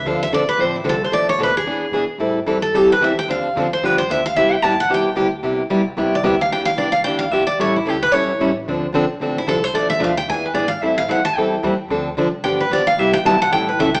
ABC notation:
X:1
M:4/4
L:1/8
Q:"Swing" 1/4=223
K:C
V:1 name="Steel-string acoustic guitar"
f e d B c E A c | d _d B _A4- A | z3 A G B e g | f3 c B c e f |
e g a ^f g4- | g2 z3 d e f | g f d f g f e d | ^c E G B c3 z |
z4 z E A c | d e f g ^g B d f | e f ^f a g4- | g2 z2 g B d f |
e g a ^f g B e g |]
V:2 name="Steel-string acoustic guitar"
[D,F,CDA] z [D,F,CDA] z [D,F,CDA] z [D,F,CDA] z | [B,,F,A,DA] z [B,,F,A,DA] z [E,B,D^G] z [E,B,DG] z | [E,G,CEA] z [E,G,CEA] z [E,G,CEA] z [E,G,CEA] z | [D,F,CDA] z [D,F,CDA] z [D,F,B,DG] z [D,F,B,DG] z |
[C,G,B,EG] z [C,G,B,EG] z [C,G,B,EG] z [C,G,B,EG] z | [C,G,B,EG] z [C,G,B,EG] z [C,G,B,EG] z [C,G,B,EG] z | [E,B,DG] z [E,B,DG] z [E,B,DG] z [E,B,DG] z | [E,G,^CEA] z [E,G,CEA] z [E,G,CEA] z [E,G,CEA] z |
[D,F,CDA] z [D,F,CDA] z [D,F,CDA] z [D,F,CDA] z | [B,,F,A,DA] z [B,,F,A,DA] z [E,B,D^G] z [E,B,DG] z | [E,G,CEA] z [E,G,CEA] z [E,G,CEA] z [E,G,CEA] z | [D,F,CDA] z [D,F,CDA] z [D,F,B,DG] z [D,F,B,DG] z |
[C,G,B,EG] z [C,G,B,EG] z [E,G,^CEA] z [E,G,CEA] z |]
V:3 name="Upright bass" clef=bass
D,,2 B,,,2 A,,,2 C,,2 | B,,,2 D,,2 E,,2 B,, z | A,,2 G,,2 F,,2 E,,2 | D,,2 F,,2 G,,2 D,,2 |
C,,2 A,,,2 B,,,2 D,,2 | C,,2 B,,,2 C,,2 D,,2 | E,,2 C,,2 D,,2 B,,,2 | A,,,2 ^C,,2 B,,,2 A,,,2 |
D,,2 B,,,2 A,,,2 C,,2 | B,,,2 D,,2 E,,2 ^G,,2 | A,,2 F,,2 E,,2 _E,, z | D,,2 C,,2 G,,,2 B,,,2 |
C,,2 B,,,2 A,,,2 ^C,,2 |]